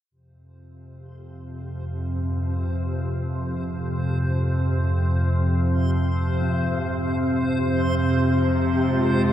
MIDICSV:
0, 0, Header, 1, 5, 480
1, 0, Start_track
1, 0, Tempo, 500000
1, 8955, End_track
2, 0, Start_track
2, 0, Title_t, "Synth texture"
2, 0, Program_c, 0, 99
2, 128, Note_on_c, 0, 72, 71
2, 8955, Note_off_c, 0, 72, 0
2, 8955, End_track
3, 0, Start_track
3, 0, Title_t, "Cello section"
3, 0, Program_c, 1, 48
3, 7660, Note_on_c, 1, 48, 55
3, 8478, Note_on_c, 1, 65, 66
3, 8494, Note_on_c, 1, 56, 64
3, 8955, Note_off_c, 1, 48, 0
3, 8955, Note_off_c, 1, 56, 0
3, 8955, Note_off_c, 1, 65, 0
3, 8955, End_track
4, 0, Start_track
4, 0, Title_t, "Singing bowl"
4, 0, Program_c, 2, 14
4, 2097, Note_on_c, 2, 44, 44
4, 6162, Note_on_c, 2, 60, 55
4, 7760, Note_off_c, 2, 44, 0
4, 8955, Note_off_c, 2, 60, 0
4, 8955, End_track
5, 0, Start_track
5, 0, Title_t, "Synth drone"
5, 0, Program_c, 3, 95
5, 106, Note_on_c, 3, 41, 67
5, 109, Note_on_c, 3, 48, 68
5, 8955, Note_off_c, 3, 41, 0
5, 8955, Note_off_c, 3, 48, 0
5, 8955, End_track
0, 0, End_of_file